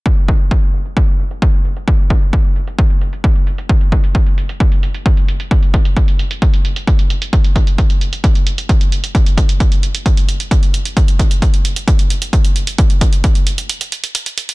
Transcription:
\new DrumStaff \with { instrumentName = "Drums" } \drummode { \time 4/4 \tempo 4 = 132 bd16 hh16 bd16 hh16 bd16 hh16 hh16 hh16 bd16 hh16 hh16 hh16 bd8 hh16 hh16 | bd16 hh16 bd16 hh16 bd16 hh16 hh16 hh16 bd16 hh16 hh16 hh16 bd16 hh16 hh16 hh16 | bd16 hh16 <hh bd>16 hh16 <hh bd>16 hh16 hh16 hh16 <hh bd>16 hh16 hh16 hh16 <hh bd>16 hh16 hh16 hh16 | <hh bd>16 hh16 <hh bd>16 hh16 <hh bd>16 hh16 hh16 hh16 <hh bd>16 hh16 hh16 hh16 <hh bd>16 hh16 hh16 hh16 |
<hh bd>16 hh16 <hh bd>16 hh16 <hh bd>16 hh16 hh16 hh16 <hh bd>16 hh16 hh16 hh16 <hh bd>16 hh16 hh16 hh16 | <hh bd>16 hh16 <hh bd>16 hh16 <hh bd>16 hh16 hh16 hh16 <hh bd>16 hh16 hh16 hh16 <hh bd>16 hh16 hh16 hh16 | <hh bd>16 hh16 <hh bd>16 hh16 <hh bd>16 hh16 hh16 hh16 <hh bd>16 hh16 hh16 hh16 <hh bd>16 hh16 hh16 hh16 | <hh bd>16 hh16 <hh bd>16 hh16 <hh bd>16 hh16 hh16 hh16 hh16 hh16 hh16 hh16 hh16 hh16 hh16 hh16 | }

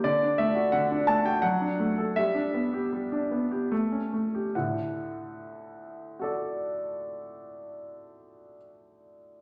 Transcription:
<<
  \new Staff \with { instrumentName = "Grand piano" } { \time 3/4 \key d \major \tempo 4 = 74 << { d''8 e''8 fis''8 a''16 g''16 fis''4 | e''2~ e''8 r8 | fis''2.~ | fis''2. | } \\ { r2. | r2. | r2 <fis' a' d''>4~ | <fis' a' d''>2. | } >> }
  \new Staff \with { instrumentName = "Grand piano" } { \time 3/4 \key d \major d16 d'16 a16 fis'16 d16 d'16 a16 fis'16 fis16 d'16 a16 a'16 | g16 d'16 b16 g'16 g16 d'16 b16 g'16 a16 cis'16 a16 g'16 | <d, a,>2.~ | <d, a,>2. | }
>>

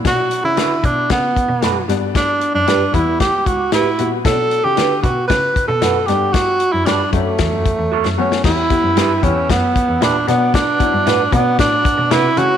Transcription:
<<
  \new Staff \with { instrumentName = "Tonewheel organ" } { \time 4/4 \key b \minor \tempo 4 = 114 << { r1 | r1 | r1 | r1 |
<e'' g'' e'''>2.~ <e'' g'' e'''>8 <d'' fis'' d'''>8~ | <d'' fis'' d'''>2.~ <d'' fis'' d'''>8 <cis'' e'' cis'''>8 | } \\ { r1 | r1 | r1 | r1 |
b'1~ | b'2.~ b'8 a'8 | } >> }
  \new Staff \with { instrumentName = "Clean electric guitar" } { \time 4/4 \key b \minor r4 <d' fis' b'>16 r4. r16 <d' fis' b'>16 r8. | r4 <d' g' b'>16 r4. r16 <e' g' b'>16 r8. | r4 <d' fis' b'>16 r4. r16 <d' fis' b'>16 r8. | r4 <d' g' b'>16 r4. r16 <fis' a' cis''>16 r8. |
r4 <e' g' b'>16 r4. r16 <e' g' b'>16 r8. | r4 <d' fis' b'>16 r4. r16 <d' fis' b'>16 r8. | }
  \new Staff \with { instrumentName = "Tenor saxophone" } { \time 4/4 \key b \minor fis'8. e'8. d'8 b4. r8 | d'8. d'8. e'8 g'8 fis'8 e'8. r16 | a'8. g'8. fis'8 b'8. a'8. g'8 | fis'8. e'16 d'8 a2 cis'8 |
e'4. cis'8 b4 d'8 b8 | d'4. b8 d'4 e'8 fis'8 | }
  \new Staff \with { instrumentName = "Upright piano" } { \time 4/4 \key b \minor <fis b d'>4. r2 <g b d'>8~ | <g b d'>4 r8 <g b e'>4. r8 <g b fis'>8 | <fis b cis' d'>4. r2 <g b d'>8~ | <g b d'>4 r8 <fis a cis'>4. r8 <fis a b>8 |
<g b e'>8 <g b e'>8 r8 <b e' g'>4. r8 <fis b d'>8~ | <fis b d'>8 <fis b e'>8 r8 <fis b cis' d'>4. r8 <a cis' e'>8 | }
  \new Staff \with { instrumentName = "Cello" } { \clef bass \time 4/4 \key b \minor b,8. cis16 d8 b,8 cis8. b,16 fis,8 g,8~ | g,8. fis,16 g,8 e,8 r16 cis,16 cis,8 a,8 ais,8 | b,8. cis16 d8 b,8 cis8. b,16 fis,8 g,8~ | g,8. fis,16 g,8 fis,8 e,16 fis,16 r16 e,16 fis,16 fis,16 fis8 |
e,8. fis,16 g,8 e,8 fis,8. e,16 ais,8 b,8~ | b,8. g,16 a,8 b,8 a,8. b,16 c8 cis8 | }
  \new DrumStaff \with { instrumentName = "Drums" } \drummode { \time 4/4 <hh bd sn>8 hh8 <hh sn>8 <hh bd>8 <hh bd sn>8 <hh bd>8 <hh sn>8 <hh sn>8 | <hh bd sn>8 hh8 <hh sn>8 <hh bd>8 <hh bd sn>8 <hh bd>8 <hh sn>8 hh8 | <hh bd sn>8 hh8 <hh sn>8 <hh bd>8 <hh bd sn>8 <hh bd>8 <hh sn>8 <hh sn>8 | <hh bd sn>8 hh8 <hh sn>8 <hh bd>8 <hh bd sn>8 <hh bd>8 r16 sn8 sn16 |
<cymc bd sn>8 <hh bd>8 <hh sn>8 <hh bd>8 <hh bd sn>8 <hh bd>8 <hh sn>8 <hh sn>8 | <hh bd sn>8 <hh bd>8 <hh sn>8 <hh bd>8 <hh bd sn>8 <hh bd>8 <hh sn>8 hh8 | }
>>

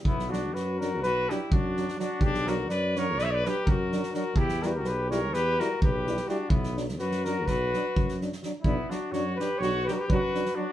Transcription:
<<
  \new Staff \with { instrumentName = "Cornet" } { \time 9/8 \key b \minor \tempo 4. = 84 e'8 fis'8 b'8 ais'8 b'8 g'8 fis'4 fis'8 | g'8 ais'8 d''8 cis''8 d''32 e''32 d''16 b'8 ais'4 ais'8 | g'8 ais'32 b'32 ais'16 b'8 cis''8 b'8 ais'8 b'4 fis'8 | e'8 r8 b'8 ais'8 b'4. r4 |
e'8 fis'8 cis''8 b'8 cis''8 b'32 ais'32 b'16 b'4 fis'8 | }
  \new Staff \with { instrumentName = "Trumpet" } { \time 9/8 \key b \minor b8 d'8 fis'8 fis'8 fis'8 e'8 d'4 d'8 | d'8 fis'8 b'8 ais'8 b'32 cis''32 b'16 g'8 fis'4 fis'8 | e'8 fis'32 g'32 fis'16 g'8 ais'8 g'8 fis'8 g'4 d'8 | b8 r8 fis'8 fis'8 fis'4. r4 |
b8 d'8 fis'8 g'8 fis'8 g'32 fis'32 g'16 fis'4 d'8 | }
  \new Staff \with { instrumentName = "Euphonium" } { \time 9/8 \key b \minor r8 d'8 r8 d'8 r8 d'8 r8 d'8 d'8 | r8 d'8 r8 d'8 r8 d'8 r8 d'8 d'8 | r8 e'8 r8 e'8 r8 e'8 r8 e'8 e'8 | r8 d'8 r8 d'8 r8 d'8 r8 d'8 d'8 |
d'8 d'8 d'8 d'8 d'8 d'8 d'8 d'8 d'8 | }
  \new Staff \with { instrumentName = "Trombone" } { \clef bass \time 9/8 \key b \minor r8 fis8 r8 fis8 r8 fis8 r8 fis8 fis8 | r8 fis8 r8 fis8 r8 fis8 r8 fis8 fis8 | r8 g8 r8 g8 r8 g8 r8 g8 g8 | r8 fis8 r8 fis8 r8 fis8 r8 fis8 fis8 |
fis8 fis8 fis8 fis8 fis8 fis8 fis8 fis8 fis8 | }
  \new Staff \with { instrumentName = "Tuba" } { \clef bass \time 9/8 \key b \minor b,,4 fis,4 b,,4 fis,4. | b,,4 fis,4 b,,4 fis,4. | e,4 b,,4 e,4 b,,4. | b,,4 fis,4 b,,4 fis,4. |
b,,8 r8 fis,4 b,,4 fis,4. | }
  \new DrumStaff \with { instrumentName = "Drums" } \drummode { \time 9/8 bd16 sn16 sn8 sn8 sn8 sn8 sn8 bd8 sn16 sn16 sn8 | bd16 sn16 sn8 sn8 sn8 sn8 sn8 bd8 sn16 sn16 sn8 | bd16 sn16 sn8 sn8 sn8 sn8 sn8 bd8 sn16 sn16 sn8 | bd16 sn16 sn16 sn16 sn16 sn16 sn8 <bd sn>8 sn8 bd16 sn16 sn16 sn16 sn8 |
bd8 sn8 sn8 sn8 sn8 sn8 bd8 sn16 sn8. | }
>>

